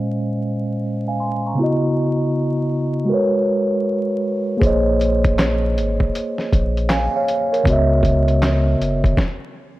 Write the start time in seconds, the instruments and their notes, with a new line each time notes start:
Already playing: tine electric piano A#2 G#3 C#4 C5 D#5 F5 G#5
1.08 tine electric piano F5 G#5
1.20 tine electric piano G#5 C6
1.46 tine electric piano A#5 C#6
1.54 tine electric piano C#3 B3
1.59 tine electric piano E4 F#4
1.63 tine electric piano D#5
3.05 tine electric piano G#3 F#4
3.09 tine electric piano A#4 B4
3.14 tine electric piano C#5
4.57 tine electric piano A#3 G#4
4.62 sub bass A#1, tine electric piano C5 C#5, kick, closed hi-hat
4.66 tine electric piano D#5
5.01 closed hi-hat
5.24 kick, closed hi-hat
5.39 snare, clap, closed hi-hat
5.77 sub bass G#1, closed hi-hat
6.00 kick
6.15 closed hi-hat
6.38 snare
6.53 sub bass A#1, kick, closed hi-hat
6.77 closed hi-hat
6.90 tine electric piano F5 G#5, snare, clap, closed hi-hat
7.16 tine electric piano C#5 F5
7.28 closed hi-hat
7.52 tine electric piano A#4 C#5, closed hi-hat
7.64 sub bass C#2, tine electric piano C#3 B3, kick, closed hi-hat
7.68 tine electric piano F#4 D#5
7.72 tine electric piano E5
8.03 kick, closed hi-hat
8.28 closed hi-hat
8.42 snare, clap, closed hi-hat
8.81 sub bass F#1, closed hi-hat
9.04 kick, closed hi-hat
9.17 kick, snare